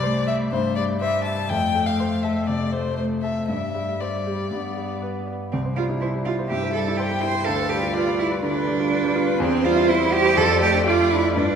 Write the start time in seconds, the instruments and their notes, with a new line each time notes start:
Already playing: grand piano C2 G3, violin D5
0.03 cello A3, grand piano C5
0.27 grand piano E5, violin E5
0.52 grand piano G2, violin C5
0.76 grand piano G3, violin D5
1.01 cello G3, grand piano C5, violin E5
1.24 grand piano E5, violin A5
1.49 grand piano F2, cello A3, violin G5
1.75 grand piano A3
1.86 violin F5
2.00 grand piano C5
2.23 grand piano A4, violin E5
2.47 grand piano C3, violin D5
2.72 grand piano A3, violin C5
2.97 cello A3, violin C5, grand piano C5
3.22 grand piano A4, violin E5
3.48 grand piano G2, cello G3, violin E5
3.74 grand piano G3
4.00 cello G3, grand piano C5, violin D5
4.26 grand piano G4
4.50 grand piano G2, cello B3
4.76 grand piano G3
5.02 grand piano B4
5.27 grand piano D5
5.52 grand piano C2, cello C4
5.65 grand piano C5
5.76 grand piano G3, cello F4
5.89 grand piano E4
6.01 cello E4, grand piano C5
6.13 grand piano G3
6.25 grand piano E4, cello F4
6.39 grand piano C5
6.49 grand piano G2, cello G4, violin E5
6.63 grand piano C5
6.73 grand piano G3, cello A4
6.88 grand piano E4
6.97 cello G4, grand piano C5, violin G5
7.11 grand piano G3
7.21 grand piano E4, cello C5
7.34 grand piano C5
7.45 grand piano D2, cello A4, violin F5
7.59 grand piano B4
7.69 grand piano G3, cello G4
7.83 grand piano F4
7.94 cello F4, grand piano B4, violin D5
8.07 grand piano G3
8.19 cello E4, grand piano F4
8.31 grand piano B4
8.42 grand piano D3, cello D4, violin B4
8.55 grand piano B4
8.67 grand piano G3
8.80 grand piano F4
8.90 violin B4, grand piano B4
9.03 grand piano G3
9.16 grand piano F4
9.27 grand piano B4
9.39 grand piano E2, cello C4, violin C5
9.52 grand piano C5
9.64 grand piano G3, cello F4
9.75 grand piano E4
9.88 cello E4, grand piano C5
10.00 grand piano G3
10.12 grand piano E4, cello G4
10.24 grand piano C5
10.37 grand piano F2, cello A4
10.50 grand piano D5
10.61 grand piano A3, cello G4
10.74 grand piano D4
10.87 cello F4, violin D5, grand piano D5
10.99 grand piano A3
11.11 grand piano D4, cello E4
11.23 grand piano D5
11.36 grand piano G2, cello D4, violin B4
11.49 grand piano B4